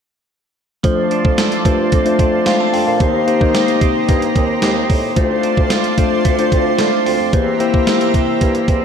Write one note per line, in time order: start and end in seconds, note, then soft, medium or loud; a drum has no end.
0.83 1.04 F2 medium
0.83 3.00 F3 medium
0.83 1.55 A3 medium
0.83 1.56 D4 medium
0.83 2.98 F4 medium
0.83 1.56 F4 medium
0.83 1.56 C5 medium
0.83 2.98 D5 medium
0.83 2.98 A5 medium
0.83 5.12 C6 medium
0.83 kick loud
0.83 closed hi-hat medium
1.11 1.64 D4 medium
1.11 closed hi-hat medium
1.25 1.45 F2 medium
1.25 kick medium
1.38 2.46 A4 medium
1.38 snare loud
1.38 closed hi-hat medium
1.52 closed hi-hat medium
1.65 1.85 G2 medium
1.65 2.01 A3 medium
1.65 2.01 D4 medium
1.65 2.18 D4 medium
1.65 2.01 F4 medium
1.65 2.01 C5 medium
1.65 kick medium
1.65 closed hi-hat medium
1.92 2.13 F2 medium
1.92 3.28 C4 medium
1.92 kick medium
1.92 closed hi-hat medium
2.05 2.89 A3 medium
2.05 2.89 D4 medium
2.05 2.89 F4 medium
2.05 2.89 C5 medium
2.05 closed hi-hat soft
2.19 2.39 F2 medium
2.19 2.73 D4 medium
2.19 kick medium
2.19 closed hi-hat medium
2.46 2.57 F3 medium
2.46 2.60 G4 medium
2.46 2.59 F5 medium
2.46 snare loud
2.46 closed hi-hat medium
2.60 3.06 A4 medium
2.60 2.73 A5 medium
2.73 2.84 F2 medium
2.73 3.06 D4 medium
2.73 2.86 G5 medium
2.73 open hi-hat medium
2.87 2.97 A#2 medium
2.87 3.13 F5 medium
2.99 3.21 D#2 medium
2.99 5.17 D#3 medium
2.99 3.24 A#3 medium
2.99 3.24 D#4 medium
2.99 5.14 G4 medium
2.99 3.24 G4 medium
2.99 3.25 C5 medium
2.99 5.14 D#5 medium
2.99 5.14 A#5 medium
2.99 kick loud
2.99 closed hi-hat medium
3.27 3.39 A#3 medium
3.27 3.81 C4 medium
3.27 3.39 D#4 medium
3.27 3.39 G4 medium
3.27 3.40 C5 medium
3.27 closed hi-hat medium
3.40 3.61 D#3 loud
3.40 4.36 A#3 medium
3.40 4.36 D#4 medium
3.40 4.36 G4 medium
3.40 4.37 C5 medium
3.40 kick medium
3.54 4.61 G4 medium
3.54 snare loud
3.54 closed hi-hat medium
3.68 closed hi-hat medium
3.81 4.02 C3 medium
3.81 4.35 C4 medium
3.81 kick medium
3.81 closed hi-hat medium
4.09 4.29 G2 medium
4.09 5.16 A#3 medium
4.09 kick medium
4.09 closed hi-hat medium
4.22 closed hi-hat soft
4.36 4.56 D#2 medium
4.36 4.89 C4 medium
4.36 kick medium
4.36 closed hi-hat medium
4.62 4.83 D#2 medium
4.62 5.22 G4 medium
4.62 snare loud
4.62 closed hi-hat medium
4.89 5.10 A2 medium
4.89 5.43 C4 medium
4.89 kick medium
4.89 open hi-hat medium
5.16 5.37 D2 medium
5.16 5.88 A3 medium
5.16 6.24 A3 medium
5.16 5.88 D4 medium
5.16 5.88 F4 medium
5.16 7.31 F4 medium
5.16 5.88 C5 medium
5.16 7.31 D5 medium
5.16 7.31 A5 medium
5.16 8.85 C6 medium
5.16 kick loud
5.16 closed hi-hat medium
5.43 5.98 C4 medium
5.43 closed hi-hat medium
5.57 5.77 D2 medium
5.57 kick medium
5.70 6.78 F4 medium
5.70 snare loud
5.70 closed hi-hat medium
5.84 closed hi-hat medium
5.97 6.18 F2 medium
5.97 6.33 A3 medium
5.97 6.52 C4 medium
5.97 6.33 D4 medium
5.97 6.34 F4 medium
5.97 6.34 C5 medium
5.97 kick medium
5.97 closed hi-hat medium
6.25 6.45 D2 medium
6.25 7.38 A3 medium
6.25 kick medium
6.25 closed hi-hat medium
6.38 7.22 A3 medium
6.38 7.22 D4 medium
6.38 7.22 F4 medium
6.38 7.22 C5 medium
6.38 closed hi-hat soft
6.52 6.72 D2 medium
6.52 7.06 C4 medium
6.52 kick medium
6.52 closed hi-hat medium
6.79 6.89 D3 medium
6.79 7.38 F4 medium
6.79 snare loud
6.79 closed hi-hat medium
7.06 7.16 D2 medium
7.06 7.60 C4 medium
7.06 open hi-hat medium
7.20 7.30 F2 medium
7.33 7.53 E2 medium
7.33 8.85 E3 medium
7.33 7.56 A#3 medium
7.33 7.57 E4 medium
7.33 8.85 G4 medium
7.33 7.57 G4 medium
7.33 7.57 C5 medium
7.33 8.85 E5 medium
7.33 8.85 A#5 medium
7.33 kick loud
7.33 closed hi-hat medium
7.60 7.72 A#3 medium
7.60 8.14 C4 medium
7.60 7.72 E4 medium
7.60 7.72 G4 medium
7.60 7.72 C5 medium
7.60 closed hi-hat medium
7.73 8.69 A#3 medium
7.73 8.69 E4 medium
7.73 8.69 G4 medium
7.73 8.69 C5 medium
7.73 kick medium
7.87 8.01 F4 medium
7.87 snare loud
7.87 closed hi-hat medium
8.01 8.85 G4 medium
8.01 closed hi-hat medium
8.14 8.34 C3 medium
8.14 8.68 C4 medium
8.14 kick medium
8.14 closed hi-hat medium
8.41 8.62 G2 medium
8.41 8.85 A#3 medium
8.41 kick medium
8.41 closed hi-hat medium
8.55 closed hi-hat soft
8.68 8.85 E2 medium
8.68 8.85 C4 medium
8.68 kick medium
8.68 closed hi-hat medium